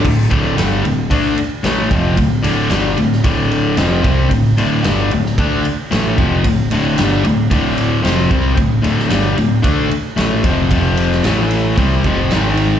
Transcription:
0.05 D1 D2 A2, kick, crash
0.31 D1 D2 A2 D3, kick, ride
0.58 G1 G2 D3 G3, snare, ride
0.85 D1 D2 A2, ride
1.11 D2 D3 A3 D4, kick, ride
1.37 muted overdriven electric guitar stroke, muted picked electric bass stroke, muted distorted electric guitar stroke, ride
1.64 A1 A2 E3 A3, snare, ride
1.91 F1 F2 C3 F3, kick, ride
2.17 D1 D2 A2, kick, ride
2.44 D1 D2 A2 D3, ride
2.71 G1 G2 D3 G3, snare, ride
2.97 D1 D2 A2, ride
3.13 snare
3.24 D1 D2 A2 D3, kick, ride
3.52 ride
3.77 F1 F2 C3 F3, snare, ride
4.04 C2 C3 G3 C4, kick, ride
4.31 D1 D2 A2, kick, ride
4.58 D1 D2 A2 D3, ride
4.84 G1 G2 D3 G3, snare, ride
5.11 D1 D2 A2, ride
5.26 snare
5.38 D2 D3 A3 D4, kick, ride
5.65 muted distorted electric guitar stroke, muted picked electric bass stroke, muted overdriven electric guitar stroke, ride
5.91 A1 A2 E3 A3, snare, ride
6.18 F1 F2 C3 F3, kick, ride
6.44 D1 D2 A2, kick, ride
6.71 D1 D2 A2 D3, ride
6.98 G1 G2 D3 G3, snare, ride
7.25 D1 D2 A2, ride
7.51 D1 D2 A2 D3, kick, ride
7.78 ride
8.05 F1 F2 C3 F3, snare, ride
8.31 C2 C3 G3 C4, kick, ride
8.57 D1 D2 A2, kick, ride
8.83 D1 D2 A2 D3, ride
8.99 snare
9.10 G1 G2 D3 G3, snare, ride
9.37 D1 D2 A2, ride
9.63 D2 D3 A3 D4, kick, ride
9.90 muted distorted electric guitar stroke, muted overdriven electric guitar stroke, muted picked electric bass stroke, ride
10.17 A1 A2 E3 A3, snare, ride
10.44 F1 F2 C3 F3, kick, ride
10.71 F1 F2 C3 F3, kick, ride
10.97 ride
11.12 snare
11.23 A1 A2 E3 A3, snare, ride
11.51 ride
11.77 C2 C3 G3 C4, kick, ride
12.04 F1 F2 C3 F3, kick, ride
12.31 G#1 G#2 D#3 G#3, snare, ride
12.57 ride

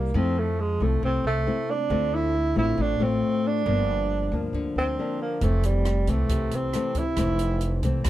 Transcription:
Already playing: C2 G3 A#3 E4
0.14 F2 F3 A3 C4 E4
0.39 A3
0.60 G#3
0.80 C2 A3 C4 E4
1.02 C2 C3 C4
1.24 C2 A3
1.47 A3 C4 E4
1.70 D4
1.90 D2 D3 A3 C4 F4
2.14 E4
2.56 A1 A3 C4 E4 F4
2.78 A1 A2 D4
3.00 A1 A3 C4 F4
3.47 D4
3.66 G1 G2 F3 A#3 D4
4.32 D2 F3 A#3 D4
4.53 D2 D3
4.76 D2 C4
4.99 F3 A#3 D4
5.22 A#3
5.41 F1 F2 E3 A3 C4, kick, closed hi-hat
5.63 G3, closed hi-hat
5.85 cross-stick, closed hi-hat
6.07 C2 E3 A3 C4, kick, closed hi-hat
6.29 C2 C3, kick, closed hi-hat
6.51 C2 C4, closed hi-hat
6.73 E3 A3 C4, cross-stick, closed hi-hat
6.95 E4, kick, closed hi-hat
7.16 F1 F2 E3 A3 C4, kick, cross-stick, closed hi-hat
7.39 closed hi-hat
7.61 closed hi-hat
7.83 C2 E3 A3 C4, kick, closed hi-hat
8.04 C2 C3, kick, cross-stick, closed hi-hat

